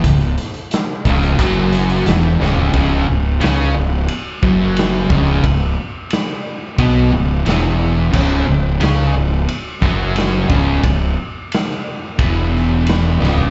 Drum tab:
CC |----------------|----------------|----------------|x---------------|
RD |----------------|b---b---b---b---|b---b---b---b---|----b---b---b---|
HH |xxxxx-xxx-xxx---|----------------|----------------|----------------|
SD |--o-o-------o-o-|----o-------o-o-|----o-------o---|----o-----o-o-o-|
FT |---------------o|----------------|----------------|----------------|
BD |o-----o-o-------|o---------o---o-|o-------o-------|o---------o---o-|

CC |----------------|
RD |b---b---b---b---|
HH |----------------|
SD |----oo----o-o-o-|
FT |---------------o|
BD |o-------o-------|